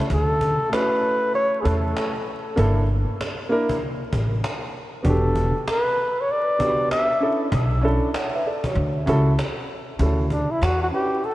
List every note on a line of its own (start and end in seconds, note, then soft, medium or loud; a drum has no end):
0.10 0.55 D2 medium
0.10 0.75 A4 loud
0.10 cajon bass loud
0.41 cajon bass medium
0.69 1.59 A3 medium
0.69 1.60 C#4 medium
0.69 1.60 E4 medium
0.69 1.61 F#4 medium
0.69 1.34 B4 loud
0.69 cajon slap loud
1.03 cajon slap soft
1.34 1.62 C#5 loud
1.34 cajon slap soft
1.61 2.10 A3 medium
1.61 2.10 C#4 medium
1.61 2.11 E4 medium
1.61 1.68 G#4 medium
1.61 2.11 A4 medium
1.65 1.93 E2 medium
1.65 2.27 A4 medium
1.65 cajon bass loud
1.97 cajon slap loud
2.27 cajon slap soft
2.56 3.03 G1 medium
2.56 2.81 A#3 medium
2.56 2.81 D4 medium
2.56 2.82 E4 medium
2.56 2.82 A4 loud
2.56 cajon bass loud
2.89 cajon slap soft
3.21 cajon slap loud
3.49 3.74 A#3 medium
3.49 3.75 D4 medium
3.49 3.75 E4 medium
3.49 3.75 A#4 loud
3.49 cajon slap soft
3.69 cajon bass medium
3.82 cajon slap soft
4.13 4.40 A1 medium
4.13 cajon bass loud
4.44 cajon slap loud
4.74 cajon slap soft
5.02 5.50 E1 medium
5.02 5.50 B3 medium
5.02 5.51 D4 medium
5.02 5.51 F#4 medium
5.02 5.52 G4 medium
5.02 cajon bass medium
5.09 5.65 A4 medium
5.36 cajon bass medium
5.68 6.22 B4 loud
5.68 cajon slap loud
5.97 cajon slap soft
6.21 6.33 C#5 medium
6.29 6.91 D5 loud
6.29 cajon slap soft
6.58 7.05 B3 medium
6.58 7.06 D4 medium
6.58 7.06 F#4 medium
6.58 7.07 G4 medium
6.58 cajon bass loud
6.91 7.38 E5 loud
6.91 cajon slap loud
7.20 7.45 C#4 medium
7.20 7.45 D4 medium
7.20 7.46 E4 medium
7.20 7.46 A4 medium
7.20 cajon slap soft
7.52 7.97 B1 loud
7.52 cajon bass loud
7.81 8.06 C#4 medium
7.81 8.07 D4 medium
7.81 8.08 E4 medium
7.81 8.08 A4 loud
7.81 cajon slap soft
8.14 8.33 C#5 soft
8.14 8.33 F#5 medium
8.14 cajon slap loud
8.35 8.45 B4 medium
8.35 8.45 E5 medium
8.45 8.65 A4 medium
8.45 8.65 D5 medium
8.45 cajon slap soft
8.64 8.95 F#4 soft
8.64 8.95 C#5 medium
8.64 cajon bass loud
8.75 9.03 D2 medium
8.75 cajon slap medium
9.06 9.35 C#2 medium
9.06 9.31 C#4 medium
9.06 9.31 E4 medium
9.06 9.31 F#4 medium
9.06 9.32 A4 loud
9.06 cajon bass medium
9.39 cajon slap loud
9.69 cajon slap soft
9.99 10.45 D2 medium
9.99 10.23 C#4 medium
9.99 10.24 E4 medium
9.99 10.25 F#4 medium
9.99 10.25 A4 medium
9.99 cajon bass loud
10.30 10.53 D4 medium
10.30 cajon bass medium
10.51 10.65 E4 medium
10.62 10.89 E2 medium
10.62 10.82 F#4 medium
10.62 cajon slap loud
10.83 10.87 F#4 medium
10.91 11.16 C#4 medium
10.91 11.16 E4 medium
10.91 11.17 F#4 medium
10.91 11.26 G4 medium
10.91 11.18 B4 medium
10.91 cajon slap soft
11.24 11.35 A4 medium
11.24 cajon slap medium